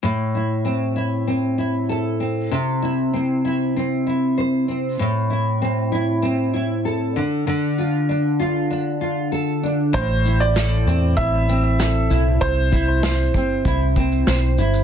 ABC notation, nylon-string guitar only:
X:1
M:4/4
L:1/8
Q:1/4=97
K:Am
V:1 name="Nylon-string guitar"
A,, E C E C E A C | C, E C E C E c C | A,, E C E C E A D, | D, F D F D F A D |
A,, E A C E C A E | z E c C E C c E |]